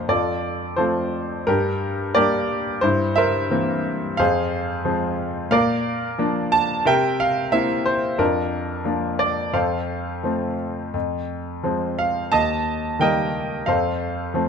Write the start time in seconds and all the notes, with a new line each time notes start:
Already playing: F2 F3 A#3 C5 F5 G5
0.08 F2 F4 A4 D5
0.76 F3 A3 C4 F4 A4 C5
1.47 G2 D4 G4 A#4
2.15 G3 A#3 D4 G4 A#4 D5
2.81 G2 E4 C5
3.16 A#4 C5 E5
3.51 E3 A#3 C4
4.17 F2 G#4 C5 F5
4.85 F3 G#3 C4
5.51 A#2 A#4 D5 F5
6.18 F3 A#3 D4
6.52 A5
6.85 C3 A#4 E5 G5
7.20 F5
7.52 A#3 C4 E4 E5
7.86 C5
8.18 F2 D4 F4 A#4
8.85 F3 A#3 D4
9.19 D5
9.53 F2 A4 C5 F5
10.23 F3 A3 C4
10.94 F2
11.63 F3 G#3 C4
11.99 F5
12.32 D#2 D#5 A5
12.99 D#3 G3 A#3 A#4 D#5 G5
13.66 F2 A4 C5 F5
14.34 F3 A3 C4